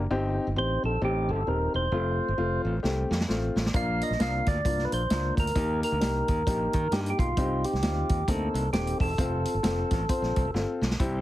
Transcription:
0.10 G1 C4 D#4 G4
0.47 G1
0.56 A1 C4 D#4 G4 C5
0.83 A#1 A4
1.01 A1 C4 D#4 G4
1.29 G1 A4
1.47 D#1 C4 D#4 G4 A#4
1.74 E1 C5
1.92 F1 A3 C4 F4
2.28 G1
2.38 F1 A3 C4 F4
2.65 A1
2.83 C2 A3 C4 G4, snare
3.11 F2, snare
3.20 snare
3.28 A1 A3 C4 F4, snare
3.56 A1, snare
3.66 snare
3.74 A#1 A#3 D4 F4 F5, kick, closed hi-hat
4.01 D#5, closed hi-hat
4.10 A#1, snare
4.19 C2 A#3 D4 F4 F5, snare, closed hi-hat
4.46 D2 D5, kick, snare, closed hi-hat
4.65 C2 A#3 D4 F4, kick, closed hi-hat
4.79 snare
4.85 B4
4.92 A#1 C5, closed hi-hat
5.10 C#2 A#3 D4 F4, snare, closed hi-hat
5.37 D2 A#4, kick, closed hi-hat
5.47 closed hi-hat
5.55 D#2 A#3 D#4 G4, kick, closed hi-hat
5.83 A#4, closed hi-hat
5.92 D2
6.01 C2 A#3 D#4 G4, snare, closed hi-hat
6.28 D#2, kick, closed hi-hat
6.47 A#1 A#3 D#4 G4, kick, closed hi-hat
6.73 D#3, kick, closed hi-hat
6.91 G2 A#3 D#4 G4, snare, closed hi-hat
7.06 closed hi-hat
7.10 G4
7.19 B1 F4, kick, closed hi-hat
7.37 C2 C4 D#4 G4, kick, closed hi-hat
7.64 G4, closed hi-hat
7.73 C2, snare
7.82 D2 C4 D#4 F4, snare, closed hi-hat
8.09 D#2, kick, closed hi-hat
8.28 D2 A#3 C4 D#4 A4, kick, closed hi-hat
8.54 C2, closed hi-hat
8.73 D#1 C4 D#4 G4 A4, snare, closed hi-hat
8.87 closed hi-hat
9.00 E1 A4, kick, open hi-hat
9.18 F1 C4 F4 A4, kick, closed hi-hat
9.45 closed hi-hat
9.54 G1
9.63 F1 C4 F4 A4, snare, closed hi-hat
9.91 A1, kick, snare, closed hi-hat
10.09 C4 F4 C5, kick, closed hi-hat
10.22 A#1, snare
10.36 C2, kick, closed hi-hat
10.45 F1
10.54 G1 C4 F4 A4, snare
10.81 B1, snare
10.91 snare
10.99 C2 C4 E4 G4, kick, closed hi-hat

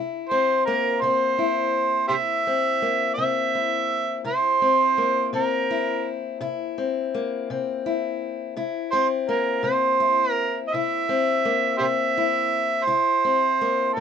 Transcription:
Already playing: C3 E4
0.29 C4 C5
0.65 A#3 A#4
1.01 C3 C4 C5
1.39 E4
2.08 C3 E4 G4 C5 E5
2.47 C4
2.82 A#3
3.14 C3 E5
3.18 C4
3.55 E4
4.25 C3 E4 C5
4.62 C4
4.98 A#3
5.33 C3 C4 A#4
5.71 E4
6.41 C3 E4
6.78 C4
7.14 A#3
7.50 C3 C4
7.86 E4
8.56 C3 E4
8.91 C4 C5
9.29 A#3 A#4
9.63 C3 C4 C5
10.00 E4
10.31 A#4
10.68 D#5 E5
10.74 C3 E4
11.09 C4
11.45 A#3
11.78 C3 C4 G4 C5 E5
12.17 E4
12.84 C3 E4 C5
13.25 C4
13.61 A#3
13.94 C3 A#4

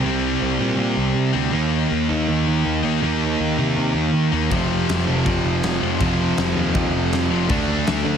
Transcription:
0.04 C2 C3 G3 C4
0.42 C2
0.59 A#2 C3 G3 C4
0.78 A#2
0.97 C2
1.15 C3
1.33 D2 C3 G3 C4
1.52 D#2 D#3 A#3 D#4
1.91 D#2
2.09 D#2 D#3 A#3 D#4
2.28 D#2
2.48 D#2
2.65 D#2
2.83 D#2 D#3 A#3 D#4
3.02 D#2 D#3 A#3 D#4
3.40 D#2
3.58 C3 D#3 A#3 D#4
3.77 C3
3.94 D#2
4.13 D#3
4.32 D#2 D#3 A#3 D#4
4.51 F1 F2 C3 F3, kick, crash
4.89 F1, snare, crash
5.06 F1 F2 C3 F3
5.25 F1 F2 C3 F3, kick, crash
5.44 F1
5.63 F1, snare, crash
5.81 F1 F2 C3 F3
6.00 F1 F2 C3 F3, kick, crash
6.38 F1, snare, crash
6.56 D#2 F2 C3 F3
6.73 D#2 F2 C3 F3, kick, crash
6.94 F1
7.12 F2, snare, crash
7.30 F1 F2 C3 F3
7.49 D2 D3 A3 D4, kick, crash
7.87 D2, snare, crash
8.05 D2 D3 A3 D4

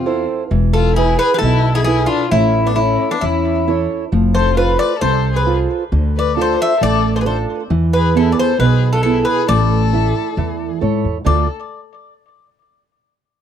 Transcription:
Already playing: E2 C4 F4
0.06 E4 A4 C5
0.51 E1 E3
0.73 F4 A4
0.96 E4 G#4 A4 B4
1.19 G#4 B4
1.34 G#4 B4
1.39 B1 E4 A4
1.43 B2
1.75 E4 G#4
1.84 E4 G#4 A4 B4
2.06 D4 F4
2.31 A1 A3 C#4 E4
2.66 B3 D4
2.76 C#4 E4 A4 C#5
3.11 B3 D4
3.21 E2 E3 C#4 E4
3.68 E4 A4 C#5
4.12 F1 F3
4.34 A4 C5
4.55 F4 A4 B4 C5
4.77 B4 D5
5.00 C2 C3 A4 C5
5.33 G#4 B4
5.47 F4 A4 C5
5.92 D2 D3
6.17 B4 D5
6.37 D4 F4 A4
6.41 C5
6.59 C5 E5
6.81 A1 A3 A4 D5
7.16 A4 C5
7.20 G#4 B4
7.26 D4 F4 A4 C5
7.70 E2 E3
7.93 G#4 B4
8.15 B3 E4 G#4 A4
8.32 B4 D5
8.38 A4 C5
8.59 B1 B2 G#4 B4
8.93 F4 A4
9.03 B3 E4 G#4 A4
9.25 G#4 B4
9.48 A1 A3 A4 D5
9.93 E4 A4 E5
10.37 E2 E3
10.81 G#2 E4 A4 C#5
11.05 E2
11.25 D2 D3 A3 D4 F4 A4 D5

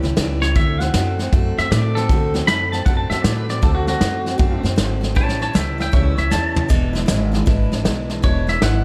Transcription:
0.03 C#2 G3 C#4 E4, snare
0.16 C#2 E3 G3 C#4 E4, snare, hi-hat pedal
0.41 G3 C#4 E4 C#5, snare
0.55 D2 D3 A3 C4 F#4 E5, kick, snare
0.80 A3 C4 F#4 F#5, snare
0.94 F#2 D3 A3 C4 F#4, snare, hi-hat pedal
1.19 A3 C4 F#4, snare
1.32 F#2 D3 A3 C4 F#4, kick, snare
1.58 F#2 A3 C4 F#4 E5, snare
1.71 A2 D3 A3 C4 F#4 D5, snare, hi-hat pedal
1.95 A3 C4 F#4 A4, snare
2.09 D2 D3 A3 C4 F#4, kick, snare
2.34 A3 C4 F#4, snare
2.47 F#2 D3 A3 C4 F#4 B5, snare, hi-hat pedal
2.72 A3 C4 F#4 A5, snare
2.86 F#2 D3 A3 C4 F#4 F#5, kick, snare
2.97 A5
3.10 F#2 A3 C4 F#4 E5, snare
3.22 A2 D3 A3 C4 D5, snare, hi-hat pedal
3.27 F#4
3.36 B4
3.49 A3 C4 F#4 D5, snare
3.62 D2 D3 A3 C4 F#4 A4, kick, snare
3.75 F#4
3.87 A3 C4 F#4, snare
4.01 F#2 D3 A3 C4 F#4, snare, hi-hat pedal
4.26 A3 C4 F#4, snare
4.38 F#2 D3 A3 C4 F#4, kick, snare
4.63 F#2 A3 C4 F#4, snare
4.76 G#1 D3 A3 C4 F#4, snare, hi-hat pedal
5.01 A3 C4 F#4, snare
5.15 A1 A2 E3 G3 C#4 E4 C#5 A5, kick, snare
5.29 snare
5.40 G3 C#4 E4 C#5 A5, snare
5.53 C#2 E3 G3 C#4 E4 E5 G5, snare, hi-hat pedal
5.78 G3 C#4 E4 E5 G5, snare
5.92 C#2 A2 E3 G3 C#4 E4 C#5 E5, kick, snare
6.17 C#2 G3 C#4 E4 C#5 E5, snare
6.30 E2 E3 G3 C#4 E4 A5, snare, hi-hat pedal
6.55 G3 C#4 E4, floor tom
6.68 E1 E2 B2 E3 G#3 D4 E4, kick, snare, splash
6.93 E3 G#3 D4 E4, snare
7.06 G#1 E3 G#3 D4 E4, snare, hi-hat pedal
7.32 E3 G#3 D4 E4, snare
7.46 G#1 E2 B2 E3 G#3 D4 E4, kick, snare
7.72 G#1 E3 G#3 D4 E4, snare
7.85 B1 E3 G#3 D4 E4, snare, hi-hat pedal
8.10 E3 G#3 D4 E4, snare
8.22 E1 E2 B2 E3 G#3 D4 E4 C#5, kick, snare
8.47 E3 G#3 D4 E4 E5, snare
8.61 G#1 E3 G#3 D4 E4 F#5, snare, hi-hat pedal

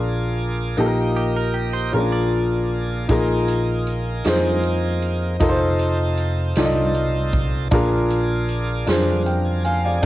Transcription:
Already playing: A#1 A#2 A#3 D4 F4 G#4 D5
0.77 A#1 A#2 A#3 D#4 G4 A4 D#5
0.86 A#4
1.17 G4
1.37 A#4
1.54 G4
1.73 C5
1.92 A#1 A#2 A#3 C#4 F4 G#4 A#4 C#5
1.98 D4 D5
2.12 D5
3.08 A#1 A#2 A#3 D#4 F4 G#4 A#4 D5, kick, closed hi-hat
3.15 D#5
3.48 closed hi-hat
3.87 closed hi-hat
4.24 F2 D#4 F4 G#4 C5, snare, closed hi-hat
4.63 closed hi-hat
5.02 closed hi-hat
5.40 F1 C4 D#4 F4 A4 A#4 D#5, kick, closed hi-hat
5.49 C5
5.79 closed hi-hat
6.17 closed hi-hat
6.55 C2 D#4 F4 A4 D5, snare, closed hi-hat
6.65 D#5
6.95 closed hi-hat
7.33 kick, closed hi-hat
7.71 A#1 A#2 A#3 D4 F4 G#4 A#4 D5, kick, closed hi-hat
8.10 closed hi-hat
8.49 closed hi-hat
8.87 F2 D4 F4 G#4 C5, snare, closed hi-hat
9.26 G5, closed hi-hat
9.45 D5 G#5
9.64 C5 F5 G#5, closed hi-hat
9.84 G#4 D5 F5
10.02 D4 G4 D5

